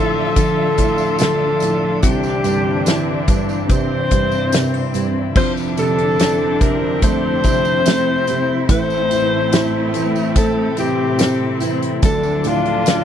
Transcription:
Already playing: felt piano D1 D2 A2 F3, steel-string acoustic guitar D3 D4 A4, cello section F3 F4, string section F3 D4 E5, alto saxophone A4
0.36 felt piano D3, alto saxophone A4, steel-string acoustic guitar A4, kick, closed hi-hat, tambourine
0.78 felt piano A2, kick, closed hi-hat, tambourine
0.98 tambourine
1.19 felt piano D3, steel-string acoustic guitar A4, alto saxophone A4, snare, closed hi-hat, tambourine
1.60 felt piano A2, closed hi-hat, tambourine
2.03 felt piano C2, steel-string acoustic guitar C3 C5, cello section D3 D4, string section E3 C4, alto saxophone G4, kick, closed hi-hat, tambourine
2.23 tambourine
2.44 felt piano G2, steel-string acoustic guitar D4, closed hi-hat, tambourine
2.86 felt piano E3, steel-string acoustic guitar E4, snare, closed hi-hat, tambourine
3.28 felt piano G2, steel-string acoustic guitar D4, kick, closed hi-hat, tambourine
3.49 tambourine
3.69 cello section C3 C4, felt piano C3, steel-string acoustic guitar C5, alto saxophone C5, kick, closed hi-hat, tambourine
4.11 felt piano G2, steel-string acoustic guitar E4, kick, closed hi-hat, tambourine
4.32 tambourine
4.52 felt piano C3, steel-string acoustic guitar A#4, snare, closed hi-hat, tambourine
4.74 steel-string acoustic guitar C5
4.94 felt piano G2, steel-string acoustic guitar E4, closed hi-hat, tambourine
5.35 felt piano F1 F2, string section F2 C4 E4, cello section D3 D4, steel-string acoustic guitar F3, alto saxophone C5, kick, crash, tambourine
5.57 tambourine
5.77 felt piano C3, steel-string acoustic guitar C4, alto saxophone A4, closed hi-hat, tambourine
5.98 closed hi-hat
6.19 felt piano C4, steel-string acoustic guitar E4, snare, closed hi-hat, tambourine
6.61 felt piano C3, steel-string acoustic guitar C4, alto saxophone A#4, kick, closed hi-hat, tambourine
7.02 felt piano A3, steel-string acoustic guitar A4, alto saxophone C5, kick, closed hi-hat, tambourine
7.43 felt piano C3, steel-string acoustic guitar E4, kick, closed hi-hat, tambourine
7.65 tambourine
7.86 cello section C3 C4, felt piano A3, steel-string acoustic guitar A4, snare, closed hi-hat, tambourine
8.27 felt piano C3, steel-string acoustic guitar E4, closed hi-hat, tambourine
8.69 felt piano A1 A2, string section A2 C4, steel-string acoustic guitar A2 A4, cello section A2 A3, alto saxophone C5, kick, closed hi-hat, tambourine
8.90 tambourine
9.11 felt piano E3, steel-string acoustic guitar C4, closed hi-hat, tambourine
9.52 steel-string acoustic guitar E4, felt piano E4, snare, closed hi-hat, tambourine
9.94 felt piano E3, steel-string acoustic guitar C4, closed hi-hat, tambourine
10.16 tambourine
10.36 felt piano C4, steel-string acoustic guitar A4, alto saxophone A4, kick, closed hi-hat, tambourine
10.77 cello section C3 C4, felt piano E3, steel-string acoustic guitar E4, alto saxophone G4, closed hi-hat, tambourine
11.19 felt piano C4, steel-string acoustic guitar A4, snare, closed hi-hat, tambourine
11.60 felt piano E3, steel-string acoustic guitar E4, closed hi-hat, tambourine
11.82 closed hi-hat
12.02 felt piano D1 D2, string section D3 F3 D4, steel-string acoustic guitar D3 A4, cello section D3 D4, alto saxophone A4, kick, closed hi-hat, tambourine
12.23 tambourine
12.44 felt piano A2, steel-string acoustic guitar D4, alto saxophone F4, closed hi-hat, tambourine
12.65 closed hi-hat
12.86 felt piano F3, snare, closed hi-hat, tambourine

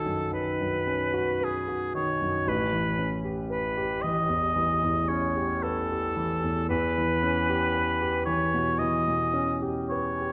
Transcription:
Already playing: grand piano B1 D#3 C#4 F#4 B4, oboe A4
0.06 grand piano F#2
0.32 grand piano D#3, oboe B4
0.61 grand piano F#2
0.87 grand piano C#4
1.13 grand piano F#4
1.41 oboe G#4, grand piano B4
1.68 grand piano F#4
1.95 grand piano D#3, oboe C#5
2.21 grand piano F#2
2.47 grand piano A1, oboe B4
2.72 grand piano E3
2.99 grand piano C#4
3.25 grand piano G4
3.50 grand piano B4, oboe B4
3.77 grand piano G4
4.02 grand piano E3, oboe D#5
4.29 grand piano E2
4.56 grand piano E3
4.83 grand piano E2
5.08 grand piano C#4, oboe C#5
5.36 grand piano G4
5.63 oboe A4, grand piano B4
5.91 grand piano G4
6.17 grand piano E3
6.44 grand piano E2
6.69 grand piano E2, oboe B4
6.98 grand piano E3
7.23 grand piano C#4
7.49 grand piano G4
7.74 grand piano B4
8.01 grand piano G4
8.25 grand piano E3, oboe C#5
8.54 grand piano B2
8.78 grand piano E3, oboe D#5
9.08 grand piano B2
9.34 grand piano C#4
9.62 grand piano G4
9.90 grand piano B4, oboe C#5
10.21 grand piano G4

